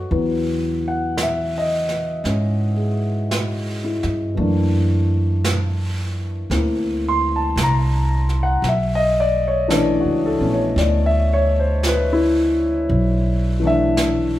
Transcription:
0.00 0.10 A3 soft
0.00 0.12 C#4 soft
0.00 0.11 D#4 soft
0.00 0.22 F#4 medium
0.00 0.13 A4 soft
0.00 0.12 B4 soft
0.00 0.12 C#5 soft
0.00 0.12 D#5 soft
0.00 0.13 F#5 soft
0.11 2.20 E2 medium
0.11 4.33 E3 soft
0.11 4.37 F#3 soft
0.11 4.38 B3 soft
0.11 brush sweep soft
0.88 1.19 F#5 medium
1.17 brush sweep soft
1.17 snare medium
1.17 hi-hat pedal soft
1.23 1.55 E5 medium
1.58 3.18 D#5 medium
1.89 snare soft
2.24 4.00 G#2 medium
2.24 4.38 C#4 soft
2.24 brush sweep soft
2.24 snare soft
2.76 3.53 G#4 soft
3.29 4.16 F#4 soft
3.29 brush sweep soft
3.29 snare soft
3.29 hi-hat pedal medium
3.84 4.60 E4 soft
4.03 4.35 G2 medium
4.03 snare soft
4.35 6.46 F#2 medium
4.35 8.62 E3 soft
4.35 8.63 A3 soft
4.35 6.49 A#3 soft
4.35 brush sweep soft
4.40 8.64 D4 medium
5.44 brush sweep soft
5.44 snare medium
5.44 hi-hat pedal medium
6.50 7.53 D2 medium
6.50 8.63 A#3 soft
6.50 8.64 C4 soft
6.50 8.65 E4 soft
6.50 brush sweep soft
6.50 snare soft
7.09 7.32 C6 medium
7.36 7.54 A5 medium
7.56 8.59 C2 medium
7.56 brush sweep soft
7.56 snare medium
7.56 hi-hat pedal medium
7.63 8.46 A#5 medium
8.29 snare soft
8.43 8.61 F#5 medium
8.62 10.01 B1 medium
8.62 brush sweep soft
8.62 snare soft
8.69 9.01 E5 medium
8.95 9.33 D#5 loud
9.20 9.44 D5 medium
9.48 9.66 C#5 medium
9.68 12.89 E3 medium
9.68 10.37 A3 medium
9.68 10.40 C#4 soft
9.68 12.89 D4 medium
9.68 brush sweep soft
9.68 snare medium
9.68 hi-hat pedal medium
9.72 10.07 D5 medium
10.00 10.39 F#4 medium
10.05 10.38 C#2 medium
10.26 10.50 A4 medium
10.38 10.74 A#1 medium
10.38 12.88 A3 soft
10.38 12.89 B3 soft
10.38 12.90 C#4 medium
10.53 10.72 C#5 medium
10.76 12.85 D2 medium
10.76 11.13 D5 medium
10.76 brush sweep soft
10.76 snare soft
11.06 11.45 E5 medium
11.33 11.57 C#5 medium
11.59 11.79 C5 medium
11.83 brush sweep soft
11.83 snare soft
11.83 hi-hat pedal medium
11.89 12.21 B4 medium
12.13 12.37 E4 medium
12.89 14.39 B1 medium
12.89 brush sweep soft
13.60 14.39 E3 medium
13.60 14.39 A3 soft
13.65 14.39 D4 medium
13.65 14.39 E5 medium
13.97 brush sweep soft
13.97 snare medium
13.97 hi-hat pedal medium

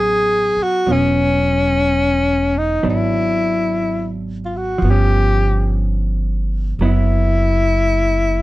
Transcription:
0.00 0.53 A1 medium
0.00 0.85 F#3 soft
0.00 0.87 B3 soft
0.00 0.89 C#4 medium
0.00 0.65 G#4 medium
0.57 muted upright bass stroke soft
0.63 0.94 F#4 medium
0.87 2.80 E1 medium
0.87 2.82 F#3 soft
0.87 2.82 B3 soft
0.87 2.84 C#4 soft
0.92 2.60 C#4 medium
2.58 2.87 D#4 medium
2.83 4.77 G#1 medium
2.83 4.78 F#3 soft
2.83 4.81 B3 soft
2.83 4.82 D4 soft
2.90 4.12 E4 medium
4.45 4.58 F4 medium
4.57 4.92 F#4 medium
4.78 6.75 G1 medium
4.78 6.77 F3 soft
4.85 6.80 B3 soft
4.90 6.82 C#4 soft
4.90 5.85 G4 medium
6.79 8.41 F#1 medium
6.79 8.42 F#3 soft
6.79 8.42 B3 soft
6.79 8.42 E4 medium
6.84 8.42 E4 medium

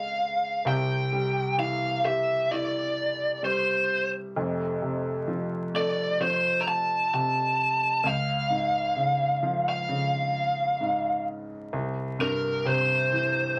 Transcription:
0.00 0.62 C#2 medium
0.00 0.62 C#3 medium
0.00 0.63 G#3 medium
0.00 0.62 F4 medium
0.00 0.15 G#4 medium
0.00 0.67 F5 loud
0.65 4.31 C2 medium
0.65 4.31 C3 medium
0.65 1.55 G5 loud
1.13 2.93 G3 medium
1.58 3.39 E3 medium
1.58 2.05 F5 loud
2.04 3.85 G4 medium
2.04 2.53 E5 loud
2.51 4.32 E4 medium
2.51 3.44 D5 medium
3.43 4.32 G3 medium
3.43 4.09 C5 medium
4.36 8.01 F1 medium
4.36 8.01 F2 medium
4.82 6.62 C3 medium
5.28 6.19 F3 medium
5.74 7.54 A3 medium
5.74 6.18 D5 medium
6.20 8.01 F3 medium
6.20 6.61 C5 medium
6.61 6.67 A#5 medium
6.68 7.13 A5 loud
7.13 8.02 C3 medium
7.13 8.08 A5 loud
8.04 11.69 C#2 medium
8.04 9.67 F5 loud
8.50 10.31 G#2 medium
8.96 9.87 C#3 soft
9.43 11.23 F3 medium
9.69 11.25 F5 medium
9.89 11.70 C#3 medium
10.81 11.71 G#2 medium
11.73 13.60 C2 medium
12.19 13.60 G2 medium
12.19 12.68 A#4 medium
12.65 13.56 C3 medium
12.65 13.60 C5 medium
13.12 13.60 E3 medium

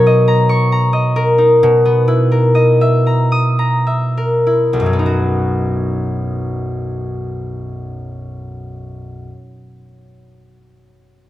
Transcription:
0.00 1.62 B2 medium
0.00 1.64 F#3 soft
0.00 0.87 B3 soft
0.00 1.37 D#4 soft
0.00 1.64 F#4 medium
0.00 1.15 A#4 soft
0.00 1.64 C#5 soft
0.00 1.65 F#5 soft
0.00 0.48 C#6 medium
0.07 0.92 D#5 medium
0.28 0.71 A#5 soft
0.49 1.64 C#6 medium
0.72 3.05 A#5 soft
0.93 2.54 D#5 soft
1.16 2.30 A#4 medium
1.38 4.98 D#4 soft
1.63 4.79 B2 medium
1.85 4.92 B3 soft
2.08 4.45 E4 soft
2.32 4.16 A#4 soft
2.55 6.45 D#5 soft
2.81 3.86 E5 soft
3.07 3.58 A#5 soft
3.32 7.22 D#6 medium
3.59 4.77 A#5 soft
3.87 4.77 E5 soft
4.17 4.78 A#4 soft
4.47 4.78 E4 soft
4.73 9.27 B1 soft
4.80 9.30 F#2 soft
4.86 9.33 F#3 soft
4.93 9.36 B3 soft
4.99 9.40 D#4 soft
5.06 9.43 F#4 soft

